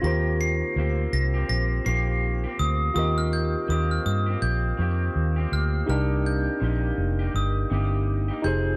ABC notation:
X:1
M:4/4
L:1/16
Q:"Swing 16ths" 1/4=82
K:Eb
V:1 name="Glockenspiel"
b'2 c''4 b'2 b'2 c''4 e'2 | e' f' g'2 e' f' e'2 g'6 f'2 | f'2 g'6 e'4 z2 g'2 |]
V:2 name="Tine electric piano"
[FGBc]16 | [FGBe]16 | [DEGB]12- [DEGB]2 [EGAc]2 |]
V:3 name="Clean electric guitar"
[E,B,CG]4 [B,CG]3 [B,CG]3 [E,B,CG]3 [B,CG]3 | [E,B,CG]4 [E,B,CG]3 [B,CG]3 [E,B,CG]3 [B,CG]3 | [C,B,EG]4 [C,B,EG]3 [B,EG]3 [C,B,EG]3 [B,EG] [F,CEA]2 |]
V:4 name="Fingered electric bass" clef=bass
E,,4 D,,2 C,,2 B,,,2 B,,,4 D,,2 | E,,4 E,,2 G,,2 B,,,2 F,,2 E,,2 D,,2 | C,,4 B,,,2 F,,,2 G,,,2 G,,,4 F,,,2 |]